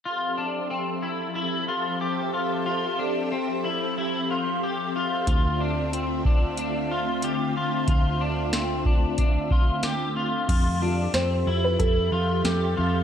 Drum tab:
CC |--------|--------|--------|--------|
HH |--------|--------|x-x-x-x-|x-x-x-x-|
SD |--------|--------|--------|--o---o-|
BD |--------|--------|o--o----|o--ooo--|

CC |x-------|
HH |x-x-x-x-|
SD |--o---o-|
BD |o---o---|